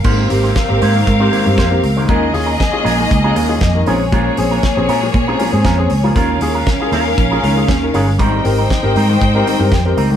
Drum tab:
CC |x-------|--------|--------|--------|
HH |-oxoxoxo|xoxoxoxo|xoxoxoxo|xoxoxoxo|
SD |--o---o-|--o---o-|--o---o-|--o---o-|
BD |o-o-o-o-|o-o-o-o-|o-o-o-o-|o-o-o-o-|

CC |--------|
HH |xoxoxoxo|
SD |--o---o-|
BD |o-o-o-o-|